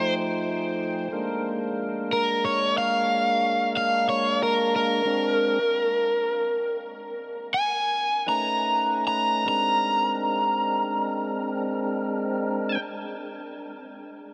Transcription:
Already playing: tonewheel organ F3 A3 D#4 G5, overdriven electric guitar C5
1.12 tonewheel organ G#3 A#3 D4 A#4
2.13 overdriven electric guitar A#4
2.45 overdriven electric guitar C#5
2.78 overdriven electric guitar F5
3.77 overdriven electric guitar F5
4.09 overdriven electric guitar C#5
4.43 overdriven electric guitar A#4
4.76 overdriven electric guitar A#4
5.05 tonewheel organ G#3 C4 D4 A#4
7.54 overdriven electric guitar G#5
8.26 tonewheel organ A3 C#4 D#4 B4, overdriven electric guitar A#5
9.07 overdriven electric guitar A#5
9.46 tonewheel organ G#3 C4 D4 A#4, overdriven electric guitar A#5

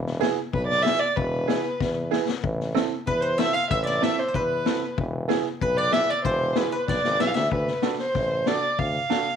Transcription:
Already playing: tuba E1
0.07 snare
0.20 upright piano B3 E4 G#4, snare
0.53 tuba B1, violin B4, kick
0.67 violin D5, snare
0.82 upright piano B3 E4 G#4, violin E5, snare
0.99 violin D5
1.16 tuba E1, violin B4, kick
1.47 upright piano B3 E4 G#4, snare
1.80 tuba E2, kick, snare
2.11 upright piano B3 E4 G#4, snare
2.28 snare
2.44 tuba A1, kick
2.60 snare
2.75 upright piano C4 E4 A4, snare
3.07 tuba E2, violin B4, koto B4, kick
3.20 violin C5, koto C5
3.38 upright piano C4 E4 A4, koto E5, violin E5, snare
3.53 violin F5, koto F5
3.70 tuba A1, violin E5, koto E5, kick
3.83 violin D5, koto D5 E5, snare
4.02 upright piano C4 E4 A4, violin E5, koto E5, snare
4.19 violin C5
4.28 koto C5
4.34 tuba E2, koto B4, violin B4, kick
4.66 upright piano C4 E4 A4, snare
4.98 tuba E1, kick
5.28 upright piano B3 E4 G#4, snare
5.61 tuba B1, violin B4, koto B4, kick
5.77 violin D5, koto D5
5.91 upright piano B3 E4 G#4, violin E5, koto E5, snare
6.10 violin D5, koto D5
6.25 tuba E1, violin C5, koto C5, kick
6.56 upright piano B3 E4 G#4, violin B4, snare
6.72 koto B4, violin B4
6.88 tuba B1, koto D5, violin D5, kick, snare
7.04 tuba G#1, snare
7.19 tuba B1, upright piano B3 E4 G#4, koto E5, violin E5, snare
7.27 violin F5
7.34 tuba D2, koto E5, violin E5, snare
7.52 tuba D2, violin B4, kick
7.67 snare
7.82 upright piano D4 F#4 A4, snare
7.98 violin C5, snare
8.14 tuba A1, kick, snare
8.46 upright piano D4 F#4 A4, violin D5, snare
8.79 tuba D2, violin F5, kick
9.10 upright piano D4 F#4 A4, snare

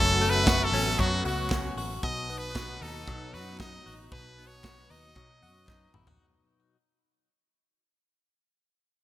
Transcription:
Already playing: fingered electric bass F#1, clean electric guitar F#2 F#3 A3 C#4 F#4, string section F#3 A3 B3, trumpet A4
0.21 clean electric guitar A3, hi-hat pedal, open hi-hat
0.30 trumpet B4
0.47 clean electric guitar F#4, kick, snare, clap, hi-hat pedal, open hi-hat
0.64 trumpet A4
0.72 fingered electric bass A1, clean electric guitar C#4, hi-hat pedal, open hi-hat
0.99 fingered electric bass F#2, clean electric guitar F#3, trumpet F#4, kick, clap, hi-hat pedal, open hi-hat
1.25 fingered electric bass C#2, clean electric guitar F#4, trumpet F#4, hi-hat pedal, open hi-hat
1.50 clean electric guitar C#4, kick, snare, clap, hi-hat pedal, open hi-hat
1.77 fingered electric bass A1, clean electric guitar F#4, hi-hat pedal, open hi-hat
2.03 fingered electric bass B1, clean electric guitar B2, string section F#3 B3 D#4, trumpet D#5, kick
2.29 clean electric guitar B3, hi-hat pedal, open hi-hat
2.38 trumpet B4
2.55 clean electric guitar F#4, kick, snare, clap
2.81 fingered electric bass D#2, clean electric guitar D#4, trumpet A4, hi-hat pedal, open hi-hat
3.07 fingered electric bass B2, clean electric guitar F#3, kick, clap, hi-hat pedal, open hi-hat
3.33 fingered electric bass F#2, clean electric guitar F#4, trumpet B4, hi-hat pedal, open hi-hat
3.58 clean electric guitar D#4, trumpet D#5, kick, snare, clap
3.86 fingered electric bass A1, clean electric guitar F#4, hi-hat pedal, open hi-hat
4.12 fingered electric bass B1, clean electric guitar B2, trumpet B4, kick, hi-hat pedal, open hi-hat
4.38 clean electric guitar B3, hi-hat pedal, open hi-hat
4.47 trumpet C#5
4.64 clean electric guitar F#4, kick, snare, clap, hi-hat pedal, open hi-hat
4.90 fingered electric bass D#2, clean electric guitar D#4, trumpet D#5, hi-hat pedal, open hi-hat
5.15 fingered electric bass B2, clean electric guitar F#3, kick, clap, hi-hat pedal, open hi-hat
5.42 fingered electric bass F#2, clean electric guitar F#4, hi-hat pedal, open hi-hat
5.67 clean electric guitar D#4, kick, snare, clap
5.94 fingered electric bass A1, clean electric guitar E4, mid tom
6.07 clean electric guitar F#4, floor tom

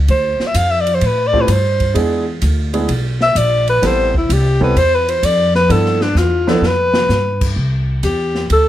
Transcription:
0.08 upright bass D2, alto saxophone C5, kick, ride
0.40 muted upright bass stroke, snare
0.47 alto saxophone E5
0.54 upright bass F2, alto saxophone F5, kick, hi-hat pedal, ride
0.71 alto saxophone E5
0.80 alto saxophone D5
0.87 ride
0.94 alto saxophone C5
1.01 upright bass A2, kick, ride
1.06 alto saxophone B4
1.27 alto saxophone D5
1.33 grand piano A3 C4 E4 F4 G4, kick
1.41 alto saxophone B4
1.48 upright bass G2, alto saxophone C5, kick, hi-hat pedal, ride
1.80 kick, ride
1.94 upright bass E2, grand piano G#3 B3 D4 E4 G#4, kick, ride
2.42 upright bass D2, kick, hi-hat pedal, ride
2.73 grand piano G#3 B3 D4 E4 G#4, ride
2.89 upright bass B1, kick, ride
3.21 alto saxophone E5, snare
3.35 upright bass A#1, alto saxophone D5, kick, hi-hat pedal, ride
3.68 alto saxophone B4, ride
3.82 upright bass A1, grand piano G3 B3 C4 E4 A4, kick, snare, ride
3.86 alto saxophone C5
4.14 alto saxophone E4, kick
4.29 upright bass C2, alto saxophone G4, kick, hi-hat pedal, ride
4.60 grand piano G3 B3 C4 E4 A4, alto saxophone B4, kick
4.76 upright bass E2, alto saxophone C5, kick, ride
4.95 alto saxophone B4
5.08 alto saxophone C5, ride
5.23 upright bass F2, alto saxophone D5, kick, hi-hat pedal, ride
5.55 alto saxophone B4, snare
5.69 upright bass G2, grand piano F3 B3 D4 E4 A4, alto saxophone A4, kick, ride
5.86 snare
6.01 alto saxophone D4, snare
6.15 upright bass E2, alto saxophone F4, snare, hi-hat pedal
6.47 grand piano F3 B3 D4 E4 B4, alto saxophone A4, snare
6.61 upright bass F2, snare
6.66 alto saxophone B4
6.94 snare
7.09 upright bass G2, snare, hi-hat pedal
7.41 kick, crash
7.56 upright bass C2, kick
8.03 upright bass E2, alto saxophone G4, kick, hi-hat pedal, ride
8.35 snare
8.50 upright bass D2, alto saxophone A4, kick, ride

